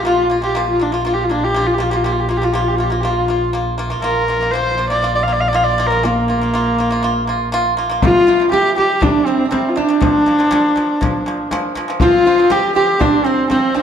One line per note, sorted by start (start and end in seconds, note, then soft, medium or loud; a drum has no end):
0.05 4.03 A#1 medium
0.05 0.25 A#3 medium
0.05 0.40 F4 loud
0.05 0.26 F4 medium
0.30 0.40 A#3 medium
0.30 0.40 F4 medium
0.42 0.52 A#3 medium
0.42 0.53 F4 medium
0.42 0.66 G4 medium
0.55 0.75 A#3 medium
0.55 0.75 F4 medium
0.70 0.84 F4 medium
0.79 0.89 A#3 medium
0.79 0.94 D4 medium
0.79 0.90 F4 medium
0.92 1.02 A#3 medium
0.92 1.02 F4 medium
0.92 1.03 F4 medium
1.04 1.25 A#3 medium
1.04 1.16 F4 medium
1.04 1.25 F4 medium
1.14 1.26 G4 medium
1.25 1.32 F4 medium
1.29 1.49 A#3 medium
1.29 1.46 D4 medium
1.29 1.50 F4 medium
1.44 1.68 G4 medium
1.54 1.74 A#3 medium
1.54 1.75 F4 medium
1.67 1.76 F4 medium
1.74 1.83 G4 medium
1.78 1.89 A#3 medium
1.78 1.90 F4 medium
1.78 1.92 F4 medium
1.90 2.02 A#3 medium
1.90 2.02 F4 medium
1.90 1.98 G4 medium
1.97 2.06 F4 medium
2.04 2.24 A#3 medium
2.04 2.25 F4 medium
2.04 2.14 G4 medium
2.12 2.22 F4 medium
2.20 2.30 G4 medium
2.29 2.39 A#3 medium
2.29 2.39 F4 medium
2.29 2.40 F4 medium
2.37 2.46 G4 medium
2.42 2.52 A#3 medium
2.42 2.52 F4 medium
2.42 2.54 F4 medium
2.53 2.74 A#3 medium
2.53 2.75 F4 medium
2.53 2.62 G4 medium
2.61 2.70 F4 medium
2.69 2.77 G4 medium
2.76 2.89 A#3 medium
2.76 2.85 F4 medium
2.76 2.90 F4 medium
2.84 2.93 G4 medium
2.90 3.01 A#3 medium
2.90 3.02 F4 medium
3.01 3.24 A#3 medium
3.01 3.24 F4 medium
3.01 3.11 G4 medium
3.09 3.61 F4 medium
3.28 3.49 A#3 medium
3.28 3.49 F4 medium
3.53 3.74 A#3 medium
3.53 3.74 F4 medium
3.78 3.88 A#3 medium
3.78 3.89 F4 loud
3.90 4.01 A#3 medium
3.90 4.01 F4 medium
4.02 8.08 A#1 medium
4.02 4.23 A#3 medium
4.02 4.24 F4 medium
4.02 4.53 A#4 medium
4.28 4.38 A#3 medium
4.28 4.39 F4 medium
4.41 4.51 A#3 medium
4.41 4.52 F4 medium
4.51 4.74 A#3 medium
4.51 4.74 F4 medium
4.51 4.89 C5 loud
4.78 4.88 A#3 medium
4.78 4.89 F4 medium
4.90 5.01 A#3 medium
4.90 5.01 F4 medium
4.90 5.14 D5 medium
5.02 5.23 A#3 medium
5.02 5.24 F4 medium
5.15 5.25 D5 medium
5.23 5.34 F5 medium
5.28 5.48 A#3 medium
5.28 5.49 F4 medium
5.33 5.42 D5 medium
5.41 5.50 F5 medium
5.48 5.57 D5 medium
5.53 5.73 A#3 medium
5.53 5.74 F4 medium
5.53 5.65 F5 medium
5.64 5.89 D5 medium
5.78 5.88 A#3 medium
5.78 5.89 F4 medium
5.87 6.01 A#3 medium
5.87 6.06 A#4 medium
5.92 6.02 F4 medium
6.03 6.23 A#3 medium
6.03 7.64 A#3 medium
6.03 6.24 F4 loud
6.28 6.38 A#3 medium
6.28 6.39 F4 medium
6.41 6.51 A#3 medium
6.41 6.52 F4 medium
6.54 6.73 A#3 medium
6.54 6.74 F4 medium
6.78 6.88 A#3 medium
6.78 6.89 F4 medium
6.91 7.01 A#3 medium
6.91 7.01 F4 medium
7.03 7.23 A#3 medium
7.03 7.24 F4 loud
7.27 7.48 A#3 medium
7.27 7.48 F4 medium
7.52 7.73 A#3 loud
7.52 7.73 F4 loud
7.77 7.87 A#3 medium
7.77 7.88 F4 medium
7.90 8.00 A#3 medium
7.90 8.01 F4 medium
8.02 8.23 C3 medium
8.02 8.24 G3 medium
8.02 8.27 F4 medium
8.02 8.50 F4 loud
8.02 frame drum medium
8.27 8.37 C3 medium
8.27 8.38 G3 medium
8.27 8.53 F4 medium
8.27 frame drum soft
8.40 8.50 C3 medium
8.40 8.51 G3 medium
8.52 8.72 C3 medium
8.52 8.73 G3 medium
8.52 8.76 G4 loud
8.52 9.02 G4 medium
8.52 frame drum soft
8.76 8.97 C3 medium
8.76 8.98 G3 medium
8.76 9.04 G4 medium
8.76 frame drum soft
9.01 9.21 C3 medium
9.01 9.22 G3 medium
9.01 9.25 D4 medium
9.01 9.27 D4 medium
9.01 frame drum medium
9.26 9.47 C3 medium
9.26 9.48 G3 medium
9.26 9.51 C4 medium
9.26 9.46 C4 medium
9.45 9.52 D4 soft
9.51 9.71 C3 medium
9.51 9.72 G3 loud
9.51 9.71 C4 medium
9.51 9.78 C4 medium
9.51 frame drum soft
9.69 9.78 F4 medium
9.76 9.86 C3 medium
9.76 9.87 G3 medium
9.76 11.76 D4 loud
9.76 11.72 D4 medium
9.76 frame drum soft
9.88 9.99 C3 medium
9.88 10.00 G3 medium
10.01 10.21 A#2 medium
10.01 10.22 F3 loud
10.01 frame drum medium
10.26 10.36 A#2 medium
10.26 10.37 F3 medium
10.26 frame drum soft
10.39 10.49 A#2 medium
10.39 10.50 F3 medium
10.51 10.71 A#2 loud
10.51 10.72 F3 loud
10.51 frame drum soft
10.76 10.96 A#2 medium
10.76 10.97 F3 medium
10.76 frame drum soft
11.01 11.21 A#2 medium
11.01 11.22 F3 loud
11.01 frame drum medium
11.26 11.46 A#2 medium
11.26 11.47 F3 medium
11.51 11.71 A#2 loud
11.51 11.72 F3 loud
11.51 frame drum soft
11.75 11.86 A#2 loud
11.75 11.87 F3 loud
11.75 frame drum soft
11.88 11.98 A#2 medium
11.88 11.99 F3 medium
12.00 12.21 F3 medium
12.00 12.22 C4 loud
12.00 12.53 F4 loud
12.00 12.26 F4 medium
12.00 frame drum medium
12.26 12.36 F3 medium
12.26 12.37 C4 medium
12.26 12.51 F4 medium
12.26 frame drum soft
12.38 12.48 F3 medium
12.38 12.49 C4 medium
12.50 12.70 F3 loud
12.50 12.71 C4 loud
12.50 12.75 G4 loud
12.50 12.75 G4 medium
12.50 frame drum soft
12.75 12.95 F3 medium
12.75 12.96 C4 medium
12.75 13.03 G4 medium
12.75 13.00 G4 medium
12.75 frame drum soft
13.00 13.20 F3 medium
13.00 13.21 C4 medium
13.00 13.26 D4 medium
13.00 13.27 D4 medium
13.00 frame drum medium
13.24 13.45 F3 medium
13.24 13.49 C4 medium
13.24 13.46 C4 medium
13.24 13.50 C4 medium
13.50 13.70 F3 medium
13.50 13.77 C4 medium
13.50 13.71 C4 medium
13.50 13.76 C4 medium
13.50 frame drum medium
13.74 13.82 F3 medium
13.74 13.82 C4 medium
13.74 13.82 D4 medium
13.74 frame drum soft